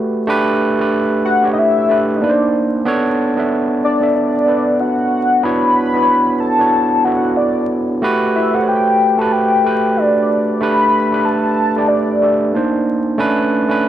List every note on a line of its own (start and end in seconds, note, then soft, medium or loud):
0.00 0.27 A3 medium
0.00 0.29 F#4 medium
0.00 0.28 G4 medium
0.00 0.22 A4 medium
0.00 0.29 B4 medium
0.27 0.74 A3 loud
0.27 0.74 D4 loud
0.27 0.74 G4 loud
0.27 0.75 B4 loud
0.79 1.37 A3 medium
0.79 1.37 D4 medium
0.79 1.38 G4 medium
0.79 1.38 B4 medium
1.25 1.49 F#5 loud
1.43 1.85 A3 medium
1.43 1.86 D4 medium
1.43 1.86 G4 medium
1.43 1.87 C#5 medium
1.53 1.60 D#5 medium
1.58 2.18 E5 loud
1.89 2.21 A3 medium
1.89 2.20 D4 medium
1.89 2.22 G4 medium
1.89 2.22 B4 medium
2.16 2.24 D#5 medium
2.21 2.81 A#3 medium
2.21 2.81 D4 medium
2.21 2.82 D#4 medium
2.21 2.30 B4 medium
2.21 2.72 D5 medium
2.30 2.85 C5 medium
2.85 3.32 B3 loud
2.85 3.32 D4 loud
2.85 3.33 A4 loud
2.85 3.33 C#5 loud
3.37 3.95 B3 medium
3.37 3.96 D4 medium
3.37 3.96 A4 medium
3.37 3.96 E5 medium
3.84 4.13 D5 medium
4.00 4.43 B3 medium
4.00 4.44 D4 medium
4.00 4.44 A4 medium
4.00 4.45 E5 medium
4.16 4.82 D5 loud
4.46 5.37 B3 medium
4.46 5.37 D4 medium
4.46 5.37 A4 medium
4.46 5.38 B4 medium
4.80 5.45 F#5 loud
5.43 5.90 B3 medium
5.43 5.90 D4 medium
5.43 5.90 E4 medium
5.43 5.91 F#4 medium
5.43 5.91 C#5 loud
5.43 6.41 B5 loud
5.94 6.53 B3 medium
5.94 6.53 D4 medium
5.94 6.53 E4 medium
5.94 6.54 F#4 medium
5.94 6.01 B4 medium
6.03 6.57 C#5 medium
6.40 7.06 A5 loud
6.59 7.01 B3 medium
6.59 7.02 D4 medium
6.59 7.02 E4 medium
6.59 7.03 F#4 medium
6.59 7.03 C#5 medium
7.04 7.95 B3 medium
7.04 7.95 D4 medium
7.04 7.96 E4 medium
7.04 7.96 F#4 medium
7.04 7.96 A4 medium
7.04 7.38 F#5 loud
7.37 7.88 D5 medium
8.02 8.48 A3 loud
8.02 8.48 F#4 loud
8.02 8.49 G4 loud
8.02 8.49 B4 loud
8.36 8.56 E5 medium
8.53 9.11 A3 medium
8.53 9.12 G4 medium
8.53 9.12 A4 medium
8.53 8.60 C5 medium
8.53 8.70 F#5 medium
8.62 9.16 C#5 medium
8.68 9.20 G5 medium
9.18 9.60 A3 medium
9.18 9.61 F#4 medium
9.18 9.61 G4 medium
9.18 9.62 B4 medium
9.18 9.34 A5 medium
9.32 9.98 G5 loud
9.64 10.54 A3 medium
9.64 10.55 G4 medium
9.64 10.54 A4 medium
9.64 10.55 B4 medium
9.97 10.61 D5 loud
10.61 11.07 A3 medium
10.61 11.07 D4 medium
10.61 11.07 G4 medium
10.61 11.08 B4 loud
10.61 11.26 B5 loud
11.11 11.69 A3 medium
11.11 11.70 D4 medium
11.11 11.70 G4 medium
11.11 11.71 B4 medium
11.25 11.88 A5 loud
11.76 12.18 A3 medium
11.76 12.19 D4 medium
11.76 12.19 G4 medium
11.76 12.20 D5 medium
11.88 12.81 D5 medium
12.22 12.54 A3 medium
12.22 12.54 D4 medium
12.22 12.54 G4 medium
12.22 12.55 A4 medium
12.53 13.13 A#3 medium
12.53 13.14 D4 medium
12.53 13.14 D#4 medium
12.53 13.15 C5 medium
13.18 13.64 A3 loud
13.18 13.65 C#4 loud
13.18 13.65 D4 loud
13.18 13.65 B4 loud
13.69 13.88 A3 medium
13.69 13.88 C#4 medium
13.69 13.88 D4 medium
13.69 13.88 B4 medium